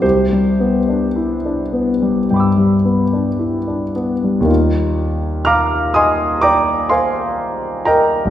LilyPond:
<<
  \new Staff \with { instrumentName = "Grand piano" } { \time 4/4 \key c \major \tempo 4 = 59 << { <g' c''>2.~ <g' c''>8 r8 | \key ees \major r4 <f'' bes'' d''' f'''>8 <ees'' aes'' c''' ees'''>8 <d'' g'' bes'' d'''>8 <c'' f'' aes'' c'''>4 <bes' ees'' g'' bes''>8 | } \\ { r2 <g'' b'' d''' e'''>2 | <ees, g bes ees' f'>1 | } >> }
  \new Staff \with { instrumentName = "Grand piano" } { \time 4/4 \key c \major c,16 g16 b16 d'16 e'16 d'16 b16 g16 g,16 g16 b16 d'16 e'16 d'16 b16 g16 | \key ees \major r1 | }
>>